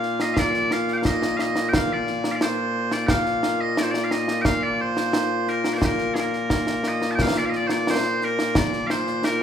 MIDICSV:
0, 0, Header, 1, 3, 480
1, 0, Start_track
1, 0, Key_signature, -2, "major"
1, 0, Tempo, 681818
1, 260, Time_signature, 2, 2, 24, 8
1, 6638, End_track
2, 0, Start_track
2, 0, Title_t, "Bagpipes"
2, 0, Program_c, 0, 109
2, 0, Note_on_c, 0, 46, 89
2, 0, Note_on_c, 0, 58, 89
2, 0, Note_on_c, 0, 65, 89
2, 0, Note_on_c, 0, 77, 91
2, 153, Note_off_c, 0, 77, 0
2, 153, Note_on_c, 0, 75, 90
2, 241, Note_off_c, 0, 75, 0
2, 241, Note_on_c, 0, 77, 94
2, 272, Note_off_c, 0, 77, 0
2, 272, Note_on_c, 0, 74, 94
2, 509, Note_off_c, 0, 74, 0
2, 509, Note_on_c, 0, 77, 94
2, 655, Note_off_c, 0, 77, 0
2, 655, Note_on_c, 0, 79, 65
2, 686, Note_off_c, 0, 79, 0
2, 686, Note_on_c, 0, 77, 65
2, 748, Note_off_c, 0, 77, 0
2, 748, Note_on_c, 0, 75, 96
2, 964, Note_off_c, 0, 75, 0
2, 964, Note_on_c, 0, 77, 82
2, 993, Note_off_c, 0, 77, 0
2, 993, Note_on_c, 0, 75, 82
2, 1188, Note_off_c, 0, 75, 0
2, 1188, Note_on_c, 0, 79, 75
2, 1232, Note_off_c, 0, 79, 0
2, 1232, Note_on_c, 0, 77, 97
2, 1358, Note_off_c, 0, 77, 0
2, 1358, Note_on_c, 0, 74, 86
2, 1629, Note_off_c, 0, 74, 0
2, 1629, Note_on_c, 0, 77, 62
2, 1658, Note_off_c, 0, 77, 0
2, 1658, Note_on_c, 0, 74, 62
2, 1706, Note_off_c, 0, 74, 0
2, 1706, Note_on_c, 0, 72, 85
2, 2062, Note_off_c, 0, 72, 0
2, 2062, Note_on_c, 0, 74, 80
2, 2159, Note_off_c, 0, 74, 0
2, 2159, Note_on_c, 0, 79, 97
2, 2183, Note_off_c, 0, 79, 0
2, 2183, Note_on_c, 0, 77, 97
2, 2541, Note_off_c, 0, 77, 0
2, 2541, Note_on_c, 0, 75, 82
2, 2663, Note_off_c, 0, 75, 0
2, 2663, Note_on_c, 0, 74, 85
2, 2697, Note_off_c, 0, 74, 0
2, 2697, Note_on_c, 0, 72, 75
2, 2752, Note_off_c, 0, 72, 0
2, 2752, Note_on_c, 0, 74, 86
2, 2843, Note_off_c, 0, 74, 0
2, 2843, Note_on_c, 0, 77, 66
2, 2899, Note_off_c, 0, 77, 0
2, 2899, Note_on_c, 0, 75, 80
2, 3107, Note_off_c, 0, 75, 0
2, 3107, Note_on_c, 0, 79, 99
2, 3134, Note_off_c, 0, 79, 0
2, 3134, Note_on_c, 0, 77, 99
2, 3258, Note_off_c, 0, 77, 0
2, 3258, Note_on_c, 0, 74, 78
2, 3386, Note_off_c, 0, 74, 0
2, 3386, Note_on_c, 0, 72, 93
2, 3864, Note_off_c, 0, 72, 0
2, 3864, Note_on_c, 0, 70, 70
2, 4037, Note_off_c, 0, 70, 0
2, 4037, Note_on_c, 0, 74, 53
2, 4067, Note_off_c, 0, 74, 0
2, 4067, Note_on_c, 0, 72, 53
2, 4120, Note_off_c, 0, 72, 0
2, 4120, Note_on_c, 0, 70, 78
2, 4323, Note_off_c, 0, 70, 0
2, 4323, Note_on_c, 0, 68, 49
2, 4363, Note_off_c, 0, 68, 0
2, 4363, Note_on_c, 0, 70, 77
2, 4844, Note_off_c, 0, 70, 0
2, 4844, Note_on_c, 0, 75, 89
2, 5005, Note_off_c, 0, 75, 0
2, 5005, Note_on_c, 0, 81, 78
2, 5034, Note_off_c, 0, 81, 0
2, 5034, Note_on_c, 0, 79, 78
2, 5081, Note_off_c, 0, 79, 0
2, 5081, Note_on_c, 0, 77, 111
2, 5194, Note_off_c, 0, 77, 0
2, 5194, Note_on_c, 0, 74, 90
2, 5248, Note_off_c, 0, 74, 0
2, 5248, Note_on_c, 0, 77, 63
2, 5279, Note_off_c, 0, 77, 0
2, 5279, Note_on_c, 0, 75, 63
2, 5323, Note_off_c, 0, 75, 0
2, 5323, Note_on_c, 0, 74, 102
2, 5400, Note_off_c, 0, 74, 0
2, 5400, Note_on_c, 0, 72, 69
2, 5431, Note_off_c, 0, 72, 0
2, 5431, Note_on_c, 0, 74, 94
2, 5563, Note_off_c, 0, 74, 0
2, 5563, Note_on_c, 0, 72, 93
2, 5803, Note_off_c, 0, 72, 0
2, 5803, Note_on_c, 0, 70, 86
2, 6036, Note_off_c, 0, 70, 0
2, 6036, Note_on_c, 0, 74, 95
2, 6243, Note_off_c, 0, 74, 0
2, 6243, Note_on_c, 0, 77, 93
2, 6268, Note_off_c, 0, 77, 0
2, 6268, Note_on_c, 0, 72, 93
2, 6510, Note_off_c, 0, 72, 0
2, 6510, Note_on_c, 0, 70, 86
2, 6638, Note_off_c, 0, 46, 0
2, 6638, Note_off_c, 0, 58, 0
2, 6638, Note_off_c, 0, 65, 0
2, 6638, Note_off_c, 0, 70, 0
2, 6638, End_track
3, 0, Start_track
3, 0, Title_t, "Drums"
3, 21, Note_on_c, 9, 38, 27
3, 91, Note_off_c, 9, 38, 0
3, 139, Note_on_c, 9, 38, 72
3, 209, Note_off_c, 9, 38, 0
3, 258, Note_on_c, 9, 35, 57
3, 258, Note_on_c, 9, 38, 88
3, 328, Note_off_c, 9, 35, 0
3, 328, Note_off_c, 9, 38, 0
3, 380, Note_on_c, 9, 38, 27
3, 450, Note_off_c, 9, 38, 0
3, 500, Note_on_c, 9, 38, 67
3, 570, Note_off_c, 9, 38, 0
3, 621, Note_on_c, 9, 38, 25
3, 692, Note_off_c, 9, 38, 0
3, 740, Note_on_c, 9, 35, 51
3, 740, Note_on_c, 9, 38, 86
3, 810, Note_off_c, 9, 35, 0
3, 810, Note_off_c, 9, 38, 0
3, 862, Note_on_c, 9, 38, 69
3, 932, Note_off_c, 9, 38, 0
3, 980, Note_on_c, 9, 38, 69
3, 1050, Note_off_c, 9, 38, 0
3, 1095, Note_on_c, 9, 38, 69
3, 1166, Note_off_c, 9, 38, 0
3, 1221, Note_on_c, 9, 35, 64
3, 1221, Note_on_c, 9, 38, 106
3, 1292, Note_off_c, 9, 35, 0
3, 1292, Note_off_c, 9, 38, 0
3, 1459, Note_on_c, 9, 38, 29
3, 1529, Note_off_c, 9, 38, 0
3, 1578, Note_on_c, 9, 38, 72
3, 1648, Note_off_c, 9, 38, 0
3, 1697, Note_on_c, 9, 38, 92
3, 1767, Note_off_c, 9, 38, 0
3, 2052, Note_on_c, 9, 38, 71
3, 2123, Note_off_c, 9, 38, 0
3, 2171, Note_on_c, 9, 35, 62
3, 2171, Note_on_c, 9, 38, 99
3, 2242, Note_off_c, 9, 35, 0
3, 2242, Note_off_c, 9, 38, 0
3, 2294, Note_on_c, 9, 38, 27
3, 2364, Note_off_c, 9, 38, 0
3, 2415, Note_on_c, 9, 38, 75
3, 2486, Note_off_c, 9, 38, 0
3, 2657, Note_on_c, 9, 38, 89
3, 2727, Note_off_c, 9, 38, 0
3, 2775, Note_on_c, 9, 38, 67
3, 2845, Note_off_c, 9, 38, 0
3, 2895, Note_on_c, 9, 38, 74
3, 2965, Note_off_c, 9, 38, 0
3, 3014, Note_on_c, 9, 38, 65
3, 3084, Note_off_c, 9, 38, 0
3, 3132, Note_on_c, 9, 35, 56
3, 3132, Note_on_c, 9, 38, 96
3, 3203, Note_off_c, 9, 35, 0
3, 3203, Note_off_c, 9, 38, 0
3, 3497, Note_on_c, 9, 38, 66
3, 3567, Note_off_c, 9, 38, 0
3, 3614, Note_on_c, 9, 38, 88
3, 3684, Note_off_c, 9, 38, 0
3, 3855, Note_on_c, 9, 38, 27
3, 3926, Note_off_c, 9, 38, 0
3, 3974, Note_on_c, 9, 38, 72
3, 4045, Note_off_c, 9, 38, 0
3, 4095, Note_on_c, 9, 35, 64
3, 4095, Note_on_c, 9, 38, 97
3, 4165, Note_off_c, 9, 35, 0
3, 4165, Note_off_c, 9, 38, 0
3, 4213, Note_on_c, 9, 38, 28
3, 4283, Note_off_c, 9, 38, 0
3, 4333, Note_on_c, 9, 38, 71
3, 4404, Note_off_c, 9, 38, 0
3, 4458, Note_on_c, 9, 38, 24
3, 4528, Note_off_c, 9, 38, 0
3, 4577, Note_on_c, 9, 35, 50
3, 4577, Note_on_c, 9, 38, 88
3, 4647, Note_off_c, 9, 35, 0
3, 4647, Note_off_c, 9, 38, 0
3, 4695, Note_on_c, 9, 38, 66
3, 4766, Note_off_c, 9, 38, 0
3, 4813, Note_on_c, 9, 38, 65
3, 4884, Note_off_c, 9, 38, 0
3, 4941, Note_on_c, 9, 38, 59
3, 5011, Note_off_c, 9, 38, 0
3, 5059, Note_on_c, 9, 35, 61
3, 5059, Note_on_c, 9, 38, 110
3, 5130, Note_off_c, 9, 35, 0
3, 5130, Note_off_c, 9, 38, 0
3, 5301, Note_on_c, 9, 38, 29
3, 5371, Note_off_c, 9, 38, 0
3, 5417, Note_on_c, 9, 38, 76
3, 5487, Note_off_c, 9, 38, 0
3, 5542, Note_on_c, 9, 38, 96
3, 5613, Note_off_c, 9, 38, 0
3, 5784, Note_on_c, 9, 38, 30
3, 5854, Note_off_c, 9, 38, 0
3, 5905, Note_on_c, 9, 38, 78
3, 5976, Note_off_c, 9, 38, 0
3, 6021, Note_on_c, 9, 35, 67
3, 6021, Note_on_c, 9, 38, 114
3, 6091, Note_off_c, 9, 35, 0
3, 6091, Note_off_c, 9, 38, 0
3, 6144, Note_on_c, 9, 38, 30
3, 6214, Note_off_c, 9, 38, 0
3, 6266, Note_on_c, 9, 38, 79
3, 6336, Note_off_c, 9, 38, 0
3, 6384, Note_on_c, 9, 38, 28
3, 6454, Note_off_c, 9, 38, 0
3, 6506, Note_on_c, 9, 38, 89
3, 6577, Note_off_c, 9, 38, 0
3, 6638, End_track
0, 0, End_of_file